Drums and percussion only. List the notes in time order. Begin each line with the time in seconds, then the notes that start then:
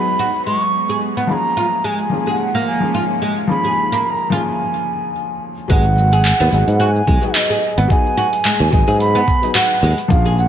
5.70 kick, open hi-hat, cabasa
5.86 cabasa
5.98 cabasa
6.13 open hi-hat, cabasa
6.25 clap, open hi-hat, cabasa
6.41 cabasa
6.53 open hi-hat, cabasa
6.68 open hi-hat, cabasa
6.80 open hi-hat, cabasa
6.96 cabasa
7.08 kick, cabasa
7.23 open hi-hat, cabasa
7.35 clap, open hi-hat, cabasa
7.50 open hi-hat, cabasa
7.64 cabasa
7.78 open hi-hat, cabasa
7.90 kick, open hi-hat, cabasa
8.06 cabasa
8.18 cabasa
8.33 open hi-hat, cabasa
8.45 clap, open hi-hat, cabasa
8.61 cabasa
8.73 kick, open hi-hat, cabasa
8.88 open hi-hat, cabasa
9.00 open hi-hat, cabasa
9.16 cabasa
9.28 kick, cabasa
9.43 open hi-hat, cabasa
9.55 clap, open hi-hat, cabasa
9.71 open hi-hat, cabasa
9.84 cabasa
9.98 open hi-hat, cabasa
10.10 kick, open hi-hat, cabasa
10.26 cabasa
10.39 cabasa